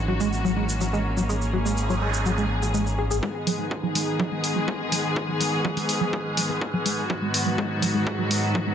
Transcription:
Already playing: analog synth bass G#1, synth drone G#2, string section E3 A#3 C#4 F#4
0.08 synth arpeggio sound F#3
0.21 synth arpeggio sound G#3, shaker
0.33 shaker
0.45 synth arpeggio sound F#3, shaker
0.57 synth arpeggio sound G#3
0.69 shaker
0.81 synth arpeggio sound F#3, shaker
0.93 synth arpeggio sound G#3, shaker
1.17 synth arpeggio sound F#3, shaker
1.29 synth arpeggio sound G#3, string section G#4, noise sweep, shaker
1.42 shaker
1.53 synth arpeggio sound F#3
1.66 synth arpeggio sound G#3, shaker
1.77 shaker
1.90 synth arpeggio sound F#3, shaker
2.02 synth arpeggio sound G#3
2.14 shaker
2.26 synth arpeggio sound F#3, shaker
2.38 synth arpeggio sound G#3, shaker
2.62 synth arpeggio sound G#4, shaker
2.74 synth arpeggio sound G#3, shaker
2.87 shaker
2.99 synth arpeggio sound G#4
3.11 synth arpeggio sound G#4, shaker
3.23 synth drone G#2, string section D#3 G#3 B3 G#4, synth arpeggio sound G#3, kick
3.47 synth arpeggio sound F#3, open hi-hat
3.59 synth arpeggio sound G#3
3.71 kick
3.83 synth arpeggio sound F#3
3.95 synth arpeggio sound G#3, open hi-hat
4.20 synth arpeggio sound F#3, kick
4.32 synth arpeggio sound G#3
4.44 open hi-hat
4.56 synth arpeggio sound F#3
4.68 synth arpeggio sound G#3, kick
4.92 synth arpeggio sound F#3, open hi-hat
5.04 synth arpeggio sound G#3
5.16 kick
5.29 synth arpeggio sound F#3
5.40 synth arpeggio sound G#3, open hi-hat
5.65 synth arpeggio sound F#3, kick
5.77 synth arpeggio sound G#3, open hi-hat
5.89 open hi-hat
6.01 synth arpeggio sound F#3
6.13 synth arpeggio sound G#3, kick
6.37 synth arpeggio sound F#3, open hi-hat
6.49 synth arpeggio sound G#3
6.61 kick
6.74 synth arpeggio sound F#3
6.86 synth arpeggio sound G#3, open hi-hat
7.10 string section G#2 D#3 F#3 F#4, synth arpeggio sound F#3, kick
7.22 synth arpeggio sound G#3
7.34 open hi-hat
7.46 synth arpeggio sound F#3
7.58 synth arpeggio sound G#3, kick
7.82 synth arpeggio sound F#3, open hi-hat
7.95 synth arpeggio sound G#3
8.07 kick
8.19 synth arpeggio sound F#3
8.31 synth arpeggio sound G#3, open hi-hat
8.55 synth arpeggio sound F#3, kick
8.67 synth arpeggio sound G#3

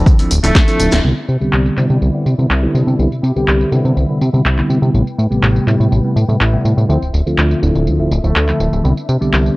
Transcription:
Already playing: tine electric piano F3 C4 D4 E4 A4
0.06 analog synth bass D2, kick, tambourine, maracas
0.19 analog synth bass D1, tine electric piano F3 C4 D4 E4 A4, closed hi-hat, tambourine, maracas
0.31 analog synth bass D1, open hi-hat, tambourine
0.43 analog synth bass D1, tine electric piano F3 C4 D4 E4 A4, horn section A3, closed hi-hat, tambourine, maracas
0.55 analog synth bass D2, kick, snare, clap, tambourine, maracas
0.67 tine electric piano F3 C4 D4 E4 A4, closed hi-hat, tambourine, maracas
0.80 analog synth bass D1, open hi-hat, tambourine
0.92 analog synth bass D1, snare, closed hi-hat, tambourine, maracas
1.03 analog synth bass C2, tine electric piano D3 G3 B3 C4 E4, string section E4 D5 B5, tambourine
1.17 tambourine
1.29 analog synth bass C3, tambourine
1.40 analog synth bass C2, tine electric piano D3 G3 B3 C4 G4, tambourine
1.53 analog synth bass C2, clap, tambourine
1.66 tambourine
1.77 analog synth bass C3, tine electric piano D3 G3 B3 C4 E4, clap, tambourine
1.90 analog synth bass C3, tambourine
2.02 analog synth bass C2, tambourine
2.14 tine electric piano D3 G3 B3 C4 E4
2.26 analog synth bass C3, tambourine
2.38 analog synth bass C3, tine electric piano D3 G3 B3 C4 E4, tambourine
2.50 analog synth bass C2, horn section E4, clap, tambourine
2.63 tine electric piano D3 G3 B3 C4 E4
2.74 analog synth bass C3, horn section A4, tambourine
2.87 analog synth bass C3, tambourine
2.99 analog synth bass C2, tine electric piano D3 G3 B3 C4 E4, string section E5, tambourine
3.12 analog synth bass C3, tambourine
3.23 analog synth bass C3, horn section G4, tambourine
3.36 analog synth bass C2, tine electric piano D3 G3 B3 C4 G4, horn section G4, tambourine
3.48 analog synth bass C2, clap, tambourine
3.61 tambourine
3.72 analog synth bass C3, tine electric piano D3 G3 B3 C4 E4, tambourine
3.85 analog synth bass C3, tambourine
3.97 analog synth bass C2, tambourine
4.09 analog synth bass C3, tine electric piano D3 G3 B3 C4 E4
4.21 analog synth bass C3, tambourine
4.33 analog synth bass C3, tine electric piano D3 G3 B3 C4 E4, tambourine
4.45 analog synth bass C2, clap, tambourine
4.57 tine electric piano D3 G3 B3 C4 E4, clap
4.70 analog synth bass C3, tambourine
4.82 analog synth bass C3, tambourine
4.93 analog synth bass A1, tine electric piano C3 G3 A3 B3 E4, string section B4 G5, tambourine
5.07 tambourine
5.18 analog synth bass A2, tambourine
5.31 analog synth bass A1, tine electric piano C3 G3 A3 B3 G4, tambourine
5.43 analog synth bass A1, clap, tambourine
5.56 tambourine
5.67 analog synth bass A2, tine electric piano C3 G3 A3 B3 E4, clap, tambourine
5.80 analog synth bass A2, tambourine
5.92 analog synth bass A1, tambourine
6.04 tine electric piano C3 G3 A3 B3 E4
6.16 analog synth bass A2, tambourine
6.28 analog synth bass A2, tine electric piano C3 G3 A3 B3 E4, tambourine
6.40 analog synth bass A1, horn section E4, clap, tambourine
6.53 tine electric piano C3 G3 A3 B3 E4
6.65 analog synth bass A2, tambourine
6.77 analog synth bass A2, tambourine
6.89 analog synth bass D2, tine electric piano D3 F3 A3 C4 E4, string section F3 E5, horn section C4, tambourine
7.02 analog synth bass D1, tambourine
7.14 analog synth bass D1, tambourine
7.26 analog synth bass D2, tine electric piano D3 F3 A3 C4 F4, tambourine
7.38 analog synth bass D2, clap, tambourine
7.51 tambourine
7.62 analog synth bass D1, tine electric piano D3 F3 A3 C4 E4, tambourine
7.75 analog synth bass D1, tambourine
7.87 analog synth bass D2, tambourine
7.99 analog synth bass D1, tine electric piano D3 F3 A3 C4 E4
8.11 analog synth bass D1, tambourine
8.24 analog synth bass D1, tine electric piano D3 F3 A3 C4 E4, horn section A3, tambourine
8.36 analog synth bass D2, clap, tambourine
8.48 tine electric piano D3 F3 A3 C4 E4, clap, tambourine
8.60 analog synth bass D1, tambourine
8.73 analog synth bass D1, tambourine
8.84 analog synth bass C2, tine electric piano D3 G3 B3 C4 E4, string section D4 B4, tambourine
8.97 tambourine
9.09 analog synth bass C3, tambourine
9.21 analog synth bass C2, tine electric piano D3 G3 B3 C4 G4, tambourine
9.33 analog synth bass C2, clap, tambourine
9.46 tambourine

